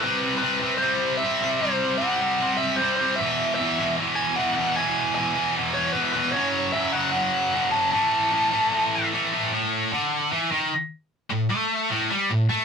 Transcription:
0.00 C3 B4
0.04 G3 C4
0.38 B4
0.43 C3 G3 C4
0.62 C3 G3 C4
0.78 C5
0.82 C3 G3 C4
1.17 E5
1.23 C3 G3 C4
1.41 C3 G3 C4
1.57 C3 C5
1.61 G3 C4
1.98 C3 G3 F#5
2.02 C4
2.21 C3 G3 C4
2.41 C3 G3 C4
2.57 E5
2.76 C5
2.81 C3 G3 C4
2.97 C3 G3 C4 C5
3.16 E2 E5
3.20 B2 E3
3.55 E2 E5
3.60 B2 E3
3.79 E2 B2 E3
3.98 E2 B2 E3
4.16 G#5
4.36 E2 B2 E3 F#5
4.55 E2 B2 E3 F#5
4.76 E2 B2 E3 G#5
5.15 E2 B2 E3 G#5
5.36 E2 B2 E3
5.57 E2 B2 E3
5.74 C#5
5.92 E2 B2 B4
5.97 E3
6.13 E2 B2 E3 B4
6.32 F#2 C#5
6.36 C#3 F#3
6.72 F#2 C#3 F#3 E5
6.92 F#2 C#3 F#3 F#5
7.11 F#5
7.15 F#2 C#3 F#3
7.54 F#2 C#3 F#3
7.71 F#2 C#3 F#3 A5
7.91 A2 E3 A3 A5
8.32 A2 E3 A3
8.52 A2 E3 A3
8.72 A2 E3 A3
9.14 A2 E3 A3
9.33 A2 E3 A3
9.53 A2
9.93 D3
10.32 E3
10.51 D#3
11.30 A2
11.50 A3
11.90 A2
12.10 G3
12.30 A2
12.49 A3

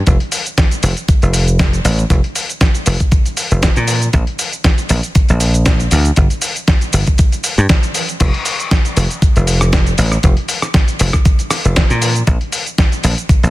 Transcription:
0.07 F1, kick, closed hi-hat, shaker
0.20 closed hi-hat
0.32 open hi-hat, shaker
0.46 closed hi-hat, shaker
0.58 kick, snare, closed hi-hat, shaker
0.71 closed hi-hat, shaker
0.83 F1, open hi-hat, shaker
0.97 closed hi-hat, shaker
1.08 muted slap bass stroke, kick, closed hi-hat, shaker
1.22 F1, closed hi-hat, shaker
1.33 open hi-hat, shaker
1.47 closed hi-hat, shaker
1.59 kick, snare, closed hi-hat, shaker
1.73 closed hi-hat, shaker
1.85 A1, open hi-hat, shaker
1.99 closed hi-hat, shaker
2.10 F1, kick, closed hi-hat, shaker
2.24 closed hi-hat
2.36 open hi-hat, shaker
2.49 closed hi-hat, shaker
2.61 kick, snare, closed hi-hat, shaker
2.75 closed hi-hat, shaker
2.86 F1, open hi-hat, shaker
3.00 kick, closed hi-hat, shaker
3.12 kick, closed hi-hat, shaker
3.26 closed hi-hat, shaker
3.37 open hi-hat, shaker
3.51 F1, closed hi-hat, shaker
3.63 kick, snare, closed hi-hat, shaker
3.76 A#2, closed hi-hat, shaker
3.88 open hi-hat, shaker
4.02 closed hi-hat, shaker
4.13 A#1, kick, closed hi-hat, shaker
4.27 closed hi-hat
4.39 open hi-hat, shaker
4.53 closed hi-hat, shaker
4.64 kick, snare, closed hi-hat, shaker
4.78 closed hi-hat, shaker
4.89 A#1, open hi-hat, shaker
5.03 closed hi-hat, shaker
5.15 muted slap bass stroke, kick, closed hi-hat, shaker
5.29 A#1, closed hi-hat, shaker
5.40 open hi-hat, shaker
5.54 closed hi-hat, shaker
5.66 kick, snare, closed hi-hat, shaker
5.80 closed hi-hat, shaker
5.91 D2, open hi-hat, shaker
6.05 closed hi-hat, shaker
6.16 G1, kick, closed hi-hat, shaker
6.30 closed hi-hat, shaker
6.42 open hi-hat, shaker
6.56 closed hi-hat, shaker
6.68 kick, snare, closed hi-hat, shaker
6.81 closed hi-hat, shaker
6.93 G1, open hi-hat, shaker
7.07 kick, closed hi-hat, shaker
7.18 kick, closed hi-hat, shaker
7.32 closed hi-hat, shaker
7.44 open hi-hat, shaker
7.58 G2, closed hi-hat, shaker
7.69 kick, snare, closed hi-hat, shaker
7.83 closed hi-hat, shaker
7.95 open hi-hat, shaker
8.09 closed hi-hat, shaker
8.20 F1, kick, closed hi-hat, crash, shaker
8.34 closed hi-hat
8.45 open hi-hat, shaker
8.60 closed hi-hat, shaker
8.71 kick, snare, closed hi-hat, shaker
8.85 closed hi-hat, shaker
8.97 F1, open hi-hat, shaker
9.10 closed hi-hat, shaker
9.22 muted slap bass stroke, kick, closed hi-hat, shaker
9.36 F1, closed hi-hat, shaker
9.47 open hi-hat, shaker
9.61 cross-stick, closed hi-hat, shaker
9.73 kick, snare, closed hi-hat, shaker
9.86 closed hi-hat, shaker
9.98 A1, open hi-hat, shaker
10.12 cross-stick, closed hi-hat, shaker
10.23 F1, kick, closed hi-hat, shaker
10.37 closed hi-hat
10.48 open hi-hat, shaker
10.62 cross-stick, closed hi-hat, shaker
10.74 kick, snare, closed hi-hat, shaker
10.88 closed hi-hat, shaker
10.99 F1, open hi-hat, shaker
11.13 kick, cross-stick, closed hi-hat, shaker
11.25 kick, closed hi-hat, shaker
11.39 closed hi-hat, shaker
11.51 cross-stick, open hi-hat, shaker
11.65 F1, closed hi-hat, shaker
11.76 kick, snare, closed hi-hat, shaker
11.90 A#2, closed hi-hat, shaker
12.02 open hi-hat, shaker
12.16 closed hi-hat, shaker
12.27 A#1, kick, closed hi-hat, shaker
12.41 closed hi-hat
12.52 open hi-hat, shaker
12.67 closed hi-hat, shaker
12.78 kick, snare, closed hi-hat, shaker
12.92 closed hi-hat, shaker
13.04 A#1, open hi-hat, shaker
13.18 closed hi-hat, shaker
13.29 muted slap bass stroke, kick, closed hi-hat, shaker
13.43 A#1, closed hi-hat, shaker

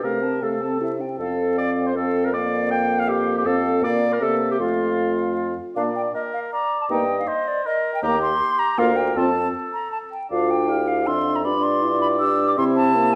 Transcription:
0.03 C3 A3 A#4 F5
0.23 C4 A5
0.42 C3 A3 A4 F5
0.62 C4 A5
0.80 C3 E4 E5
1.00 C4 G5
1.19 F2 C4 A4 F5
1.58 D5
1.86 C5
1.95 C4 A4 F5
2.24 A#4
2.33 A#3 D5 F5
2.71 G5
2.99 F5
3.08 G4
3.37 G4
3.46 F2 C4 A4 F5
3.83 A#2 A#3 D5 F5
4.13 A#4
4.21 C3 A#3 A4 E5
4.51 G4
4.60 F2 A3 F4 F5
5.76 A#2 A#3 D4 D5 F5
5.95 G5
6.14 A#4 D#5
6.34 F5
6.52 D5 A#5
6.81 A5
6.90 G2 A#3 D#4 D#5 G5
7.19 F5
7.27 C5 D#5
7.48 D5
7.65 A#4 D#5
7.94 G5
8.03 D#2 A#3 G4 A#5
8.22 C6
8.59 A#5
8.78 D2 A#3 F4 A#4 F5
8.96 G5
9.16 F2 C4 F4 A4 A5
9.73 A#5
9.92 A5
10.12 G5
10.30 D2 D4 F4 D5 F5
10.50 G5
10.68 E4 G4 F5
10.88 F5
11.06 F2 D4 F4 E5 C6
11.36 A#5
11.44 G2 D4 F4 D5 B5
11.63 C6
11.83 E4
12.01 B5
12.20 D4 G4 E6
12.48 D6
12.57 C3 C4 E4 E5 C6
12.76 A5
12.95 A#3

